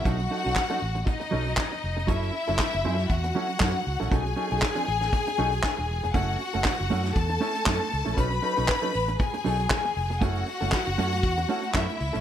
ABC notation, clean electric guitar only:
X:1
M:4/4
L:1/16
Q:"Swing 16ths" 1/4=118
K:F#dor
V:1 name="Clean electric guitar"
[F,CDA]2 [F,CDA] [F,CDA] z [F,CDA]2 z3 [F,CDA]2 z4 | [F,CEA]2 z [F,CEA] z2 [F,CEA]2 z2 [F,CEA]2 [F,CEA]2 z [F,CEA] | [F,CDA]2 [F,CDA] [F,CDA] z [F,CDA]2 z3 [F,CDA]2 z4 | [A,CEA]2 z [A,CEA] z2 [A,CEA]2 z2 [A,CEA]2 [A,CEA]2 z [A,CEA] |
[F,CDA]2 [F,CDA] [F,CDA] z [F,CDA]2 z3 [F,CDA]2 z4 | [A,CEA]2 z [A,CEA] z2 [A,CEA]2 z2 [A,CEA]2 [A,CEA]2 z [A,CEA] |]